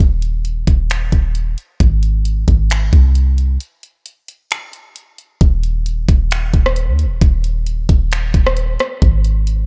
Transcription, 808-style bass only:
0.00 0.65 D#1 loud
0.67 1.11 D#1 loud
1.12 1.56 D#1 loud
1.80 2.45 G#1 loud
2.48 2.91 G#1 loud
2.93 3.58 C2 loud
5.41 6.06 D#1 loud
6.09 6.52 D#1 loud
6.54 6.89 D#1 loud
6.88 7.06 D#2 loud
7.04 7.21 D#1 loud
7.21 7.86 D#1 loud
7.89 8.32 D#1 loud
8.34 8.77 D#1 loud
9.02 9.66 G#1 loud

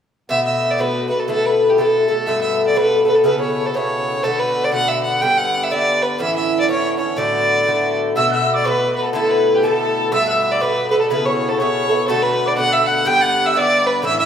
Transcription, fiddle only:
0.30 0.43 E5 medium
0.45 0.72 E5 medium
0.71 0.82 D5 medium
0.80 1.09 B4 medium
1.09 1.21 B4 medium
1.20 1.28 A4 medium
1.29 1.47 A4 medium
1.45 1.71 B4 medium
1.70 1.80 G4 medium
1.78 2.28 A4 medium
2.26 2.41 E5 medium
2.41 2.64 E5 medium
2.67 2.78 D5 medium
2.77 3.06 B4 medium
3.08 3.17 B4 medium
3.15 3.25 A4 medium
3.25 3.39 B4 medium
3.41 3.68 C#5 medium
3.66 3.77 A4 medium
3.75 4.25 C#5 medium
4.23 4.41 A4 medium
4.39 4.66 B4 medium
4.64 4.73 D5 medium
4.74 4.89 F#5 medium
4.88 5.02 E5 medium
5.04 5.23 F#5 medium
5.21 5.39 G5 medium
5.38 5.65 F#5 medium
5.63 5.73 E5 medium
5.72 6.04 D5 loud
6.02 6.20 B4 medium
6.21 6.34 E5 medium
6.36 6.58 E5 medium
6.60 6.68 D5 medium
6.70 6.97 C#5 medium
6.98 7.19 C#5 medium
7.18 7.96 D5 medium
8.16 8.30 E5 medium
8.32 8.54 E5 medium
8.56 8.67 D5 medium
8.66 8.95 B4 medium
8.96 9.07 B4 medium
9.05 9.14 A4 medium
9.15 9.32 A4 medium
9.30 9.57 B4 medium
9.55 9.64 G4 medium
9.63 10.12 A4 medium
10.13 10.26 E5 loud
10.28 10.53 E5 medium
10.52 10.63 D5 medium
10.61 10.90 B4 medium
10.90 10.99 B4 medium
11.01 11.09 A4 medium
11.10 11.27 B4 medium
11.26 11.50 C#5 medium
11.49 11.60 A4 medium
11.58 12.07 C#5 medium
12.08 12.24 A4 medium
12.22 12.49 B4 medium
12.48 12.57 D5 medium
12.58 12.74 F#5 loud
12.73 12.88 E5 medium
12.86 13.09 F#5 medium
13.07 13.23 G5 loud
13.21 13.48 F#5 medium
13.46 13.58 E5 medium
13.57 13.88 D5 loud
13.86 14.04 B4 medium
14.05 14.18 E5 loud
14.19 14.26 E5 medium

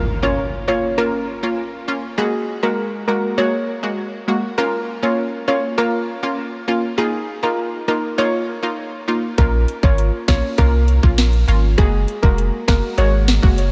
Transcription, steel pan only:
0.23 0.35 C#5 medium
0.68 0.80 C#5 medium
0.98 1.40 A#4 loud
2.18 2.30 G#4 loud
2.63 2.75 A#4 medium
3.08 3.20 A#4 medium
3.38 3.80 C#5 medium
4.58 4.70 A#4 loud
5.03 5.15 C#5 medium
5.48 5.60 C#5 medium
5.78 6.20 A#4 loud
6.98 7.10 G#4 loud
7.43 7.56 A#4 medium
7.88 8.00 A#4 medium
8.18 8.61 C#5 medium
9.38 9.50 A#4 loud
9.83 9.96 C#5 medium
10.28 10.40 C#5 medium
10.58 11.00 A#4 loud
11.78 11.90 G#4 loud
12.23 12.35 A#4 medium
12.68 12.80 A#4 medium
12.98 13.40 C#5 medium

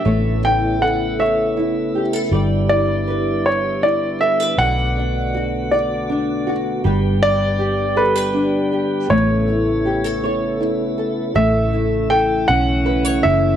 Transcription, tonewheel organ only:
0.05 2.30 C#3 soft
0.05 2.30 A3 soft
0.05 11.33 B3 soft
0.05 4.55 E4 medium
2.31 9.07 D3 soft
2.31 4.56 G3 soft
4.58 6.82 A3 soft
4.58 6.82 F#4 medium
6.84 9.08 G3 soft
6.84 9.09 G4 medium
9.10 11.34 C#3 medium
9.10 11.34 A3 soft
9.10 11.34 E4 medium
11.36 13.56 C#3 medium
11.36 13.56 E3 soft
11.36 13.56 A3 soft
11.36 13.56 E4 medium

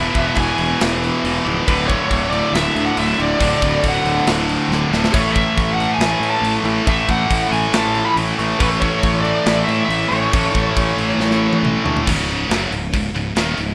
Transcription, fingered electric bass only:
0.15 0.29 E1 medium
0.37 0.51 E1 medium
0.59 0.73 E1 loud
0.81 1.09 E1 medium
1.24 1.38 E1 loud
1.46 1.60 C#1 medium
1.68 1.96 D1 medium
2.11 2.40 D1 loud
2.52 2.67 D1 medium
2.75 2.89 D2 medium
2.98 3.11 D1 loud
3.20 3.33 D1 medium
3.40 3.54 D1 loud
3.62 3.76 D1 loud
3.84 3.98 D1 medium
4.04 4.19 D1 medium
4.27 4.55 D1 medium
4.68 4.83 D1 medium
4.91 5.06 D1 medium
5.14 5.42 A1 loud
5.57 5.85 A1 medium
5.98 6.13 A1 medium
6.20 6.35 A2 medium
6.42 6.56 A1 medium
6.64 6.78 A1 medium
6.87 7.01 A1 loud
7.09 7.23 A1 medium
7.30 7.44 A1 loud
7.51 7.65 A1 medium
7.72 8.01 A1 medium
8.16 8.31 A1 loud
8.39 8.53 A1 medium
8.61 8.89 A1 loud
9.03 9.32 A1 medium
9.46 9.61 A1 loud
9.68 9.82 A2 medium
9.89 10.03 A1 loud
10.11 10.25 A1 medium
10.34 10.48 A1 loud
10.55 10.69 A1 medium
10.76 10.91 A1 medium
10.97 11.12 A1 medium
11.18 11.47 A1 loud
11.63 11.77 A1 loud
11.84 11.99 D2 medium
12.07 12.47 C#1 loud
12.49 12.69 F#1 loud
12.71 12.91 C#1 medium
12.94 13.13 C#1 medium
13.14 13.34 C#1 medium
13.36 13.56 D#1 loud
13.58 13.74 C#1 medium

